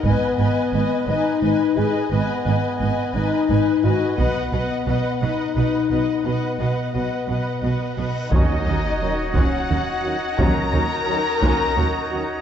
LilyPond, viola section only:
\new Staff \with { instrumentName = "Viola section" } { \time 6/8 \key ces \lydian \tempo 4. = 58 ces''8 ces''8 ces''8 ces''8 ces''8 ces''8 | ces''8 ces''8 ces''8 ces''8 ces''8 ces''8 | b'8 b'8 b'8 b'8 b'8 b'8 | b'8 b'8 b'8 b'8 b'8 b'8 |
\key ees \minor <ges des'>8 <ges des'>8 r8 <ges des'>8 <ges des'>8 r8 | <ges des'>8 <ges des'>8 r8 <ges des'>8 <ges des'>8 r8 | }